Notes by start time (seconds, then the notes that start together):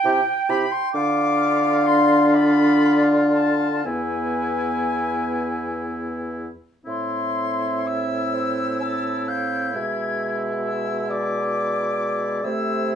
Already playing: G5
0.04 C3 E4 G4
0.49 C3 E4 G4 B5
0.71 C6
0.92 D3 D4 F4 F5 D6
1.86 C6
2.34 D5 B5
3.33 A5
3.85 E2 B3 E4 B4 G#5
6.85 A2 C4 E4 E5 C6
7.87 E6
8.34 C5
8.81 A5
9.28 F5 G6
9.74 B2 G#3 E5 G#6
10.66 E6
11.09 D5 D6
12.43 C3 A3 E4 C5 E6